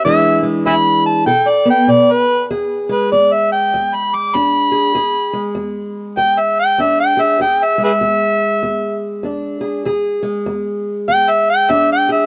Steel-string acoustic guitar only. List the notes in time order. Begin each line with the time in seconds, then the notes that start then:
0.05 E2 E3 G#3 D4 G#4
0.43 G#3
0.66 E2
1.26 B2 A4
1.65 B3
1.88 B2
2.50 E2 G#4
2.89 G#3
3.12 E2
3.74 E2
4.34 E2 D4
4.72 G#4
4.95 E2 G#4
5.33 G#3
5.55 E2
6.17 E2
6.78 E2 D4
7.17 G#4
7.40 E2 G#4
7.78 G#3
8.01 E2
8.63 E2
9.23 E2 D4
9.61 G#4
9.85 E2 G#4
10.23 G#3
10.46 E2
11.08 E2
11.69 E2 D4
12.09 G#4